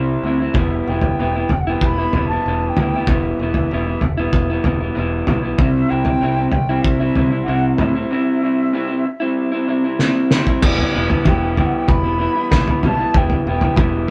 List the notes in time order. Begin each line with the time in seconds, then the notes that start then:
Already playing: C2 C3 G3 C4 E4
0.23 D2 C3 G3 C4 E4
0.40 G3 C4 E4
0.54 E1 E3 G3 B3 E5, kick, floor tom
0.59 E4
0.87 E1 E3 G3 B3 E4 G5
1.01 floor tom
1.19 E1 E3 G3 B3 E4
1.36 G3 B3 E4
1.49 E1 G5, muted clean electric guitar stroke, floor tom
1.60 F#5
1.67 G3 B3 E4 G5
1.81 E1 B5, kick
1.98 G3 B3 E4
2.13 E1 E3 G3 B3, floor tom
2.17 E4
2.27 A5
2.32 G3 B3 E4
2.46 E1 E3 G3 B3 E4
2.69 G5
2.77 D2 E3 G3, floor tom, mid tom
2.81 B3 E4
2.95 G3 B3 E4
3.07 E1 E3 G3 B3, kick, floor tom
3.11 E4 E5
3.40 E1 E3 G3 B3 E4
3.54 floor tom
3.71 E1 E3 G3 B3 E4
3.87 G3 B3 E4
4.01 E1, muted clean electric guitar stroke, floor tom
4.18 G3 B3 E4
4.33 E1, kick
4.50 G3 B3 E4
4.64 E1 E3 G3 B3 E4, floor tom
4.80 G3 B3 E4
4.95 E1 E3 G3 B3 E4
5.27 B1 E3 G3 B3 E4, floor tom, mid tom
5.43 G3 B3 E4
5.58 C2 C3 G3 C4 E4 E5, kick, floor tom
5.89 C2 C3 G3 C4 E4 G5
6.05 floor tom
6.21 C2 C3 G3 C4 E4
6.37 G3 C4 E4
6.50 G5, muted clean electric guitar stroke, floor tom
6.54 C2
6.69 G3 C4 E4
6.81 C2 E5, kick
7.00 G3 C4 E4
7.15 C2 C3 G3 C4 E4, floor tom
7.30 G3 C4 E4
7.43 C3 F#5
7.48 C2 G3 C4 E4
7.76 C3 E5, floor tom, mid tom
7.80 A2 G3 C4 E4
7.95 G3 C4 E4
8.10 C3 G3 C4 E4
8.42 C3 G3 C4 E4
8.73 C3 G3 C4 E4
8.88 G3 C4 E4
9.06 muted clean electric guitar stroke
9.20 G3 C4 E4
9.52 G3 C4 E4
9.67 C3 G3 C4 E4
9.84 G3 C4 E4
9.99 C3 G3 C4 E4, snare
10.31 C3 G3 C4, snare
10.35 E4
10.47 G3 C4 E4, kick
10.62 E1 E3 G3 B3 E4 D5, kick, floor tom, crash
10.78 floor tom
10.94 E1 E3 G3 B3 E4 E5
11.10 G3 B3 E4, floor tom
11.24 E1 E3 G3 B3 E4 G5, kick, mid tom
11.55 E3 G3 B3 E4 G5, floor tom
11.65 F#5
11.73 G5
11.88 E1 B5, kick, floor tom
12.04 G3 B3 E4
12.18 E3 G3 B3 E4
12.36 G3 B3 E4
12.51 B1 E3 G3 B3 E4, kick, snare, floor tom
12.68 G3 B3 E4, floor tom
12.83 B1 E3 G3 B3 E4 A5, floor tom, mid tom
12.99 G3 B3 E4
13.14 E1 E3 G3 B3 E4 G5, kick, floor tom
13.30 floor tom
13.46 E1 E3 G3 B3 E4 G5
13.61 G3 B3 E4, floor tom
13.76 E1 E3 G3 B3 E4 E5, kick, mid tom